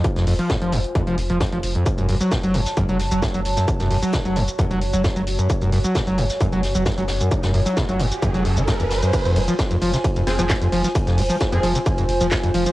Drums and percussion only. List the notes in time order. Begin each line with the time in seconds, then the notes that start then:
0.04 kick, closed hi-hat
0.16 snare, closed hi-hat
0.26 open hi-hat
0.39 closed hi-hat
0.50 kick, snare, closed hi-hat
0.62 closed hi-hat
0.72 closed hi-hat, open hi-hat
0.84 closed hi-hat
0.95 kick, closed hi-hat
1.07 closed hi-hat
1.18 closed hi-hat, open hi-hat
1.30 closed hi-hat
1.40 kick, snare, closed hi-hat
1.46 closed hi-hat
1.52 closed hi-hat
1.62 closed hi-hat, open hi-hat
1.75 closed hi-hat
1.86 kick, closed hi-hat, shaker
1.98 closed hi-hat, shaker
2.08 closed hi-hat, open hi-hat
2.21 closed hi-hat, shaker
2.31 kick, snare, closed hi-hat, shaker
2.43 closed hi-hat, shaker
2.54 closed hi-hat, open hi-hat
2.66 snare, closed hi-hat, shaker
2.77 kick, closed hi-hat, shaker
2.89 closed hi-hat, shaker
2.99 snare, closed hi-hat, open hi-hat
3.11 closed hi-hat, shaker
3.22 kick, snare, closed hi-hat, shaker
3.28 closed hi-hat
3.34 closed hi-hat, shaker
3.45 closed hi-hat, open hi-hat
3.56 snare, closed hi-hat, shaker
3.68 kick, closed hi-hat, shaker
3.80 snare, closed hi-hat, shaker
3.91 open hi-hat
4.02 closed hi-hat, shaker
4.12 kick, snare, closed hi-hat, shaker
4.25 closed hi-hat, shaker
4.36 closed hi-hat, open hi-hat
4.48 closed hi-hat, shaker
4.59 kick, closed hi-hat, shaker
4.71 closed hi-hat, shaker
4.81 closed hi-hat, open hi-hat
4.93 closed hi-hat, shaker
5.04 kick, snare, closed hi-hat, shaker
5.10 closed hi-hat
5.16 closed hi-hat, shaker
5.27 closed hi-hat, open hi-hat
5.39 closed hi-hat, shaker
5.49 kick, closed hi-hat, shaker
5.62 closed hi-hat, shaker
5.72 closed hi-hat, open hi-hat
5.84 closed hi-hat, shaker
5.95 kick, snare, closed hi-hat, shaker
6.07 closed hi-hat, shaker
6.18 closed hi-hat, open hi-hat
6.30 snare, closed hi-hat, shaker
6.41 kick, closed hi-hat, shaker
6.52 closed hi-hat, shaker
6.63 snare, closed hi-hat, open hi-hat
6.75 closed hi-hat, shaker
6.86 kick, snare, closed hi-hat, shaker
6.92 closed hi-hat
6.98 closed hi-hat, shaker
7.08 snare, closed hi-hat, open hi-hat
7.21 closed hi-hat, shaker
7.31 kick, closed hi-hat, shaker
7.43 snare, closed hi-hat, shaker
7.54 open hi-hat
7.66 closed hi-hat, shaker
7.77 kick, snare, closed hi-hat, shaker
7.89 closed hi-hat, shaker
8.00 closed hi-hat, open hi-hat
8.11 closed hi-hat, shaker
8.22 kick, closed hi-hat, shaker
8.34 closed hi-hat, shaker
8.45 closed hi-hat, open hi-hat
8.57 closed hi-hat, shaker
8.67 kick, snare, closed hi-hat, shaker
8.74 closed hi-hat
8.80 closed hi-hat, shaker
8.91 snare, closed hi-hat, open hi-hat
9.02 closed hi-hat, shaker
9.13 kick, closed hi-hat, crash, ride, shaker
9.25 closed hi-hat, ride, shaker
9.36 closed hi-hat, open hi-hat, ride
9.48 closed hi-hat, ride, shaker
9.59 kick, snare, closed hi-hat, ride, shaker
9.71 closed hi-hat, ride, shaker
9.82 closed hi-hat, open hi-hat, ride
9.93 snare, closed hi-hat, ride, shaker
10.04 kick, closed hi-hat, ride, shaker
10.16 closed hi-hat, ride, shaker
10.27 snare, closed hi-hat, open hi-hat, ride
10.39 closed hi-hat, ride, shaker
10.49 kick, snare, clap, closed hi-hat, ride, shaker
10.56 closed hi-hat
10.62 closed hi-hat, ride, shaker
10.72 closed hi-hat, open hi-hat, ride
10.84 snare, closed hi-hat, ride, shaker
10.95 kick, closed hi-hat, ride, shaker
11.07 snare, closed hi-hat, ride, shaker
11.18 open hi-hat, ride
11.30 closed hi-hat, ride, shaker
11.40 kick, snare, closed hi-hat, ride, shaker
11.52 closed hi-hat, ride, shaker
11.63 closed hi-hat, open hi-hat, ride
11.75 closed hi-hat, ride, shaker
11.86 kick, closed hi-hat, ride, shaker
11.98 closed hi-hat, ride, shaker
12.09 closed hi-hat, open hi-hat, ride
12.21 closed hi-hat, ride, shaker
12.31 kick, snare, clap, closed hi-hat, ride, shaker
12.37 closed hi-hat
12.43 closed hi-hat, ride, shaker
12.54 closed hi-hat, open hi-hat, ride
12.66 closed hi-hat, ride, shaker